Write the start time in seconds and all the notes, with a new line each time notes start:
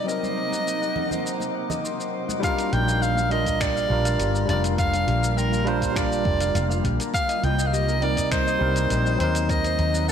Already playing: C3 A#3 D#4 G4 D#5 G5 D6
0.04 F#3 C4 A#4
0.08 F#3 D#4 A#4 D#5, shaker
0.23 C5, high conga, shaker
0.37 A#5
0.52 F#5, muted conga, shaker
0.67 F#5, shaker
0.82 F#5, shaker
0.96 A#4, high conga, low conga
1.11 C5, low conga, shaker
1.25 A#5, shaker
1.40 F#5, muted conga, shaker
1.55 F#5
1.70 D#5, low conga, shaker
1.84 C6, shaker
1.99 C5, shaker
2.14 C6
2.28 F#5, high conga, shaker
2.40 D3 G3 A#3 D4 F4 G4, kick, closed hi-hat
2.44 F4 A#4 F5, shaker
2.57 A#4, closed hi-hat, shaker
2.72 A#1 G5, closed hi-hat
2.87 F5, shaker
3.01 F5, shaker
3.16 F5, shaker
3.29 G3 D4 F4 G4 A#4 D#5, closed hi-hat
3.46 A#4, kick, closed hi-hat, shaker
3.60 D5 G5, finger snap, kick, closed hi-hat, shaker
3.76 F5, shaker
3.88 A#1 G3 D4 F4 F5
3.92 A#4
4.05 F5, closed hi-hat, shaker
4.19 G1 G4, closed hi-hat, shaker
4.34 A#4, shaker
4.45 F1 G3 D4 G5, closed hi-hat
4.50 F4 A#4 D5
4.64 F5, closed hi-hat, shaker
4.78 F5, kick, closed hi-hat, shaker
4.93 F5, closed hi-hat, shaker
5.07 A#1 G4, closed hi-hat
5.22 A#4, shaker
5.37 A#4 G5, shaker
5.52 F5, shaker
5.65 G3 D4 F4 A#4 C5 F5, closed hi-hat
5.81 F5, kick, closed hi-hat, shaker
5.92 G3 D4 G4, kick
5.96 F4 A#4 D5, finger snap, closed hi-hat, shaker
6.11 A#4, shaker
6.25 F1 G5, kick
6.40 F5, closed hi-hat, shaker
6.55 F1 F5, closed hi-hat, shaker
6.70 F5, shaker
6.84 A#1 G4, kick, closed hi-hat
6.99 A#4, closed hi-hat, shaker
7.14 C3 D#4 F5 G5, kick, closed hi-hat, shaker
7.29 D#5, closed hi-hat, shaker
7.43 C2 D#5 G5, closed hi-hat
7.58 D#5, shaker
7.67 F5
7.73 G4 D#5, shaker
7.88 A#4, shaker
8.00 G3 C4 D#4 A#4 D5 G5, closed hi-hat
8.17 D#5, kick, closed hi-hat, shaker
8.31 C5 D#5, finger snap, kick, closed hi-hat, shaker
8.47 D#5, shaker
8.59 C2 G3 C4 D#4 G4 A#4
8.76 A#4, closed hi-hat, shaker
8.90 A#1 G5, closed hi-hat, shaker
9.06 D#5, shaker
9.16 D#2 F#3 C4 D#5, closed hi-hat
9.21 D#4 A#4 C5
9.35 D#5, closed hi-hat, shaker
9.49 F#3 A#4 D#5, kick, closed hi-hat, shaker
9.64 C5, closed hi-hat, shaker
9.79 D#2 A#5, closed hi-hat
9.94 F#5, shaker
10.08 F#5